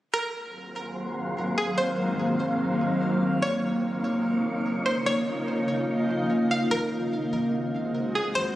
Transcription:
0, 0, Header, 1, 5, 480
1, 0, Start_track
1, 0, Tempo, 410959
1, 157, Time_signature, 4, 2, 24, 8
1, 9993, End_track
2, 0, Start_track
2, 0, Title_t, "Synth pluck"
2, 0, Program_c, 0, 84
2, 158, Note_on_c, 0, 70, 113
2, 1071, Note_off_c, 0, 70, 0
2, 1842, Note_on_c, 0, 68, 73
2, 2068, Note_off_c, 0, 68, 0
2, 2074, Note_on_c, 0, 72, 94
2, 2989, Note_off_c, 0, 72, 0
2, 3999, Note_on_c, 0, 73, 100
2, 4911, Note_off_c, 0, 73, 0
2, 5673, Note_on_c, 0, 72, 79
2, 5903, Note_off_c, 0, 72, 0
2, 5914, Note_on_c, 0, 73, 116
2, 7549, Note_off_c, 0, 73, 0
2, 7603, Note_on_c, 0, 77, 79
2, 7828, Note_off_c, 0, 77, 0
2, 7839, Note_on_c, 0, 70, 114
2, 8751, Note_off_c, 0, 70, 0
2, 9522, Note_on_c, 0, 68, 73
2, 9748, Note_off_c, 0, 68, 0
2, 9755, Note_on_c, 0, 72, 105
2, 9993, Note_off_c, 0, 72, 0
2, 9993, End_track
3, 0, Start_track
3, 0, Title_t, "Synth texture"
3, 0, Program_c, 1, 99
3, 158, Note_on_c, 1, 58, 78
3, 158, Note_on_c, 1, 65, 74
3, 158, Note_on_c, 1, 66, 76
3, 158, Note_on_c, 1, 68, 74
3, 158, Note_on_c, 1, 72, 88
3, 3959, Note_off_c, 1, 58, 0
3, 3959, Note_off_c, 1, 66, 0
3, 3959, Note_off_c, 1, 68, 0
3, 3959, Note_off_c, 1, 72, 0
3, 3998, Note_on_c, 1, 58, 80
3, 3998, Note_on_c, 1, 63, 74
3, 3998, Note_on_c, 1, 73, 89
3, 7791, Note_off_c, 1, 65, 0
3, 7799, Note_off_c, 1, 58, 0
3, 7799, Note_off_c, 1, 63, 0
3, 7799, Note_off_c, 1, 73, 0
3, 9993, End_track
4, 0, Start_track
4, 0, Title_t, "Ambient pad"
4, 0, Program_c, 2, 92
4, 157, Note_on_c, 2, 44, 78
4, 157, Note_on_c, 2, 51, 71
4, 157, Note_on_c, 2, 54, 68
4, 157, Note_on_c, 2, 58, 73
4, 157, Note_on_c, 2, 60, 70
4, 157, Note_on_c, 2, 77, 84
4, 3958, Note_off_c, 2, 51, 0
4, 3959, Note_off_c, 2, 44, 0
4, 3959, Note_off_c, 2, 54, 0
4, 3959, Note_off_c, 2, 60, 0
4, 3959, Note_off_c, 2, 77, 0
4, 3996, Note_on_c, 2, 65, 86
4, 3997, Note_on_c, 2, 49, 77
4, 3997, Note_on_c, 2, 63, 72
4, 7790, Note_off_c, 2, 58, 0
4, 7798, Note_off_c, 2, 49, 0
4, 7798, Note_off_c, 2, 63, 0
4, 7798, Note_off_c, 2, 65, 0
4, 7837, Note_on_c, 2, 56, 81
4, 7837, Note_on_c, 2, 60, 72
4, 7837, Note_on_c, 2, 66, 85
4, 9993, Note_off_c, 2, 56, 0
4, 9993, Note_off_c, 2, 60, 0
4, 9993, Note_off_c, 2, 66, 0
4, 9993, End_track
5, 0, Start_track
5, 0, Title_t, "808-style bass"
5, 0, Program_c, 3, 38
5, 7837, Note_on_c, 3, 32, 110
5, 8528, Note_off_c, 3, 32, 0
5, 8556, Note_on_c, 3, 32, 107
5, 9710, Note_off_c, 3, 32, 0
5, 9757, Note_on_c, 3, 32, 109
5, 9993, Note_off_c, 3, 32, 0
5, 9993, End_track
0, 0, End_of_file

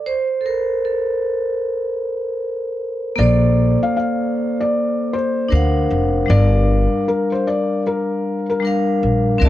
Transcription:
0, 0, Header, 1, 4, 480
1, 0, Start_track
1, 0, Key_signature, -2, "minor"
1, 0, Tempo, 779221
1, 36, Time_signature, 4, 2, 24, 8
1, 5847, End_track
2, 0, Start_track
2, 0, Title_t, "Felt piano"
2, 0, Program_c, 0, 0
2, 1963, Note_on_c, 0, 74, 91
2, 2327, Note_off_c, 0, 74, 0
2, 2357, Note_on_c, 0, 77, 72
2, 2433, Note_off_c, 0, 77, 0
2, 2443, Note_on_c, 0, 77, 76
2, 2807, Note_off_c, 0, 77, 0
2, 2836, Note_on_c, 0, 74, 79
2, 3160, Note_off_c, 0, 74, 0
2, 3162, Note_on_c, 0, 72, 79
2, 3375, Note_off_c, 0, 72, 0
2, 3882, Note_on_c, 0, 74, 104
2, 4334, Note_off_c, 0, 74, 0
2, 4364, Note_on_c, 0, 70, 86
2, 4496, Note_off_c, 0, 70, 0
2, 4512, Note_on_c, 0, 72, 78
2, 4598, Note_off_c, 0, 72, 0
2, 4605, Note_on_c, 0, 74, 84
2, 4817, Note_off_c, 0, 74, 0
2, 4847, Note_on_c, 0, 70, 82
2, 5209, Note_off_c, 0, 70, 0
2, 5234, Note_on_c, 0, 70, 75
2, 5311, Note_off_c, 0, 70, 0
2, 5847, End_track
3, 0, Start_track
3, 0, Title_t, "Vibraphone"
3, 0, Program_c, 1, 11
3, 0, Control_c, 1, 64, 127
3, 0, Note_on_c, 1, 74, 102
3, 39, Note_on_c, 1, 72, 90
3, 44, Control_c, 1, 64, 0
3, 74, Note_off_c, 1, 74, 0
3, 146, Control_c, 1, 64, 127
3, 252, Note_off_c, 1, 72, 0
3, 253, Note_on_c, 1, 69, 62
3, 280, Note_off_c, 1, 69, 0
3, 283, Note_on_c, 1, 70, 77
3, 503, Note_off_c, 1, 70, 0
3, 524, Note_on_c, 1, 69, 64
3, 1695, Note_off_c, 1, 69, 0
3, 1943, Note_on_c, 1, 58, 80
3, 1957, Note_on_c, 1, 69, 70
3, 1963, Control_c, 1, 64, 0
3, 1972, Note_on_c, 1, 72, 66
3, 1985, Note_on_c, 1, 74, 85
3, 2081, Control_c, 1, 64, 127
3, 2626, Note_off_c, 1, 58, 0
3, 2633, Note_off_c, 1, 69, 0
3, 2641, Note_off_c, 1, 72, 0
3, 2647, Note_off_c, 1, 74, 0
3, 3379, Note_on_c, 1, 62, 73
3, 3391, Note_on_c, 1, 70, 72
3, 3400, Note_on_c, 1, 72, 59
3, 3403, Control_c, 1, 64, 0
3, 3411, Note_on_c, 1, 77, 64
3, 3422, Note_on_c, 1, 78, 74
3, 3516, Control_c, 1, 64, 127
3, 3742, Note_off_c, 1, 62, 0
3, 3748, Note_off_c, 1, 70, 0
3, 3752, Note_off_c, 1, 72, 0
3, 3758, Note_off_c, 1, 77, 0
3, 3763, Note_off_c, 1, 78, 0
3, 3856, Note_on_c, 1, 55, 70
3, 3869, Note_on_c, 1, 62, 62
3, 3885, Control_c, 1, 64, 0
3, 3886, Note_on_c, 1, 70, 75
3, 3899, Note_on_c, 1, 77, 79
3, 3983, Control_c, 1, 64, 127
3, 4543, Note_off_c, 1, 55, 0
3, 4549, Note_off_c, 1, 62, 0
3, 4558, Note_off_c, 1, 70, 0
3, 4564, Note_off_c, 1, 77, 0
3, 5297, Note_on_c, 1, 55, 68
3, 5313, Note_on_c, 1, 62, 63
3, 5329, Note_on_c, 1, 70, 64
3, 5341, Note_on_c, 1, 77, 77
3, 5661, Note_off_c, 1, 55, 0
3, 5669, Note_off_c, 1, 62, 0
3, 5676, Note_off_c, 1, 70, 0
3, 5683, Note_off_c, 1, 77, 0
3, 5780, Note_on_c, 1, 60, 90
3, 5791, Note_on_c, 1, 70, 85
3, 5800, Note_on_c, 1, 74, 86
3, 5803, Control_c, 1, 64, 0
3, 5809, Note_on_c, 1, 76, 80
3, 5823, Note_on_c, 1, 81, 98
3, 5847, Note_off_c, 1, 60, 0
3, 5847, Note_off_c, 1, 70, 0
3, 5847, Note_off_c, 1, 74, 0
3, 5847, Note_off_c, 1, 76, 0
3, 5847, Note_off_c, 1, 81, 0
3, 5847, End_track
4, 0, Start_track
4, 0, Title_t, "Upright bass"
4, 0, Program_c, 2, 32
4, 1961, Note_on_c, 2, 34, 110
4, 2305, Note_off_c, 2, 34, 0
4, 3401, Note_on_c, 2, 38, 105
4, 3612, Note_off_c, 2, 38, 0
4, 3639, Note_on_c, 2, 29, 89
4, 3850, Note_off_c, 2, 29, 0
4, 3880, Note_on_c, 2, 31, 111
4, 4225, Note_off_c, 2, 31, 0
4, 5563, Note_on_c, 2, 34, 87
4, 5773, Note_off_c, 2, 34, 0
4, 5800, Note_on_c, 2, 36, 112
4, 5847, Note_off_c, 2, 36, 0
4, 5847, End_track
0, 0, End_of_file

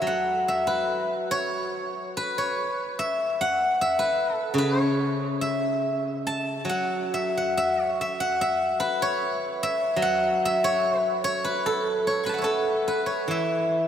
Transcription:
0, 0, Header, 1, 2, 480
1, 0, Start_track
1, 0, Tempo, 837989
1, 33, Time_signature, 2, 2, 24, 8
1, 1472, Tempo, 801068
1, 2912, Tempo, 859599
1, 4352, Tempo, 811908
1, 6752, Tempo, 851064
1, 8030, End_track
2, 0, Start_track
2, 0, Title_t, "Guzheng"
2, 0, Program_c, 0, 107
2, 0, Note_on_c, 0, 69, 54
2, 0, Note_on_c, 0, 71, 55
2, 0, Note_on_c, 0, 73, 59
2, 0, Note_on_c, 0, 76, 61
2, 9, Note_on_c, 0, 54, 43
2, 39, Note_on_c, 0, 78, 64
2, 274, Note_off_c, 0, 76, 0
2, 277, Note_on_c, 0, 76, 63
2, 381, Note_off_c, 0, 71, 0
2, 383, Note_on_c, 0, 71, 64
2, 525, Note_off_c, 0, 73, 0
2, 750, Note_on_c, 0, 73, 77
2, 805, Note_off_c, 0, 69, 0
2, 958, Note_off_c, 0, 78, 0
2, 1240, Note_off_c, 0, 71, 0
2, 1242, Note_on_c, 0, 71, 72
2, 1263, Note_off_c, 0, 76, 0
2, 1361, Note_off_c, 0, 73, 0
2, 1363, Note_on_c, 0, 73, 72
2, 1461, Note_off_c, 0, 54, 0
2, 1723, Note_on_c, 0, 76, 77
2, 1975, Note_on_c, 0, 78, 83
2, 2215, Note_off_c, 0, 76, 0
2, 2217, Note_on_c, 0, 76, 72
2, 2320, Note_off_c, 0, 71, 0
2, 2322, Note_on_c, 0, 71, 70
2, 2501, Note_off_c, 0, 73, 0
2, 2532, Note_off_c, 0, 71, 0
2, 2532, Note_on_c, 0, 69, 70
2, 2651, Note_on_c, 0, 49, 51
2, 2678, Note_on_c, 0, 71, 81
2, 2816, Note_off_c, 0, 71, 0
2, 2816, Note_on_c, 0, 73, 81
2, 2934, Note_off_c, 0, 78, 0
2, 3155, Note_off_c, 0, 76, 0
2, 3158, Note_on_c, 0, 76, 74
2, 3505, Note_off_c, 0, 69, 0
2, 3634, Note_on_c, 0, 81, 70
2, 3758, Note_off_c, 0, 73, 0
2, 3847, Note_on_c, 0, 54, 45
2, 3855, Note_off_c, 0, 49, 0
2, 3873, Note_on_c, 0, 78, 63
2, 4119, Note_off_c, 0, 76, 0
2, 4121, Note_on_c, 0, 76, 67
2, 4251, Note_off_c, 0, 78, 0
2, 4253, Note_on_c, 0, 78, 70
2, 4363, Note_off_c, 0, 76, 0
2, 4365, Note_on_c, 0, 76, 75
2, 4449, Note_off_c, 0, 81, 0
2, 4519, Note_off_c, 0, 76, 0
2, 4519, Note_on_c, 0, 73, 75
2, 4620, Note_off_c, 0, 73, 0
2, 4623, Note_on_c, 0, 76, 71
2, 4734, Note_off_c, 0, 78, 0
2, 4736, Note_on_c, 0, 78, 74
2, 4858, Note_off_c, 0, 76, 0
2, 4860, Note_on_c, 0, 76, 72
2, 5088, Note_on_c, 0, 71, 73
2, 5221, Note_on_c, 0, 73, 76
2, 5314, Note_off_c, 0, 54, 0
2, 5578, Note_off_c, 0, 76, 0
2, 5580, Note_on_c, 0, 76, 81
2, 5685, Note_off_c, 0, 78, 0
2, 5778, Note_on_c, 0, 54, 57
2, 5813, Note_on_c, 0, 78, 86
2, 6065, Note_off_c, 0, 76, 0
2, 6068, Note_on_c, 0, 76, 84
2, 6176, Note_off_c, 0, 73, 0
2, 6178, Note_on_c, 0, 73, 80
2, 6298, Note_off_c, 0, 71, 0
2, 6385, Note_off_c, 0, 73, 0
2, 6385, Note_on_c, 0, 71, 80
2, 6531, Note_off_c, 0, 71, 0
2, 6533, Note_on_c, 0, 73, 79
2, 6653, Note_on_c, 0, 71, 69
2, 6761, Note_off_c, 0, 78, 0
2, 6779, Note_on_c, 0, 69, 69
2, 7009, Note_off_c, 0, 73, 0
2, 7011, Note_on_c, 0, 73, 61
2, 7070, Note_off_c, 0, 76, 0
2, 7103, Note_on_c, 0, 85, 26
2, 7110, Note_on_c, 0, 83, 27
2, 7117, Note_off_c, 0, 71, 0
2, 7119, Note_on_c, 0, 71, 59
2, 7135, Note_on_c, 0, 81, 30
2, 7161, Note_on_c, 0, 78, 31
2, 7188, Note_on_c, 0, 76, 35
2, 7204, Note_off_c, 0, 73, 0
2, 7206, Note_on_c, 0, 73, 38
2, 7213, Note_off_c, 0, 54, 0
2, 7214, Note_off_c, 0, 71, 0
2, 7216, Note_on_c, 0, 71, 38
2, 7217, Note_off_c, 0, 69, 0
2, 7219, Note_on_c, 0, 69, 60
2, 7463, Note_off_c, 0, 71, 0
2, 7465, Note_on_c, 0, 71, 57
2, 7568, Note_off_c, 0, 73, 0
2, 7570, Note_on_c, 0, 73, 56
2, 7691, Note_on_c, 0, 52, 45
2, 7706, Note_off_c, 0, 76, 0
2, 7708, Note_on_c, 0, 76, 64
2, 7813, Note_off_c, 0, 85, 0
2, 7872, Note_off_c, 0, 83, 0
2, 7952, Note_off_c, 0, 81, 0
2, 8030, Note_off_c, 0, 52, 0
2, 8030, Note_off_c, 0, 69, 0
2, 8030, Note_off_c, 0, 71, 0
2, 8030, Note_off_c, 0, 73, 0
2, 8030, Note_off_c, 0, 76, 0
2, 8030, Note_off_c, 0, 78, 0
2, 8030, End_track
0, 0, End_of_file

